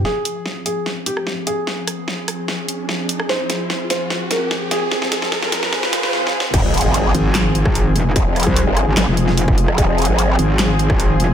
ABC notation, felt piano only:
X:1
M:4/4
L:1/8
Q:1/4=148
K:Fm
V:1 name="Felt piano"
A3 A z G z A- | A8 | c3 c z B z A- | A6 z2 |
z8 | z8 | z8 |]